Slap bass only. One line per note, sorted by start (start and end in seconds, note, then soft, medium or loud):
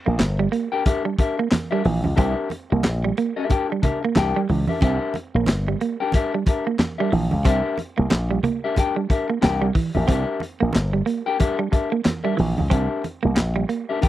0.07 0.17 A#1 loud
0.20 0.46 G1 medium
1.85 2.01 A#1 loud
2.05 2.15 C#2 medium
2.18 2.33 C2 loud
2.72 2.85 C2 loud
2.85 3.10 A#1 loud
4.17 4.32 C2 loud
4.49 4.65 C#2 medium
4.82 4.97 C2 loud
5.34 5.48 A#1 loud
5.48 5.73 G1 medium
7.12 7.28 A#1 medium
7.33 7.46 C#2 medium
7.46 7.61 C2 loud
7.99 8.09 C2 medium
8.12 8.37 A#1 medium
9.44 9.69 C2 loud
9.96 10.06 A#1 medium
10.08 10.24 C2 loud
10.62 10.72 A#1 loud
10.75 11.01 G1 loud
12.39 12.54 A#1 loud
12.59 12.69 C#2 medium
12.71 12.87 C2 loud
13.25 13.37 C2 medium
13.37 13.63 A#1 loud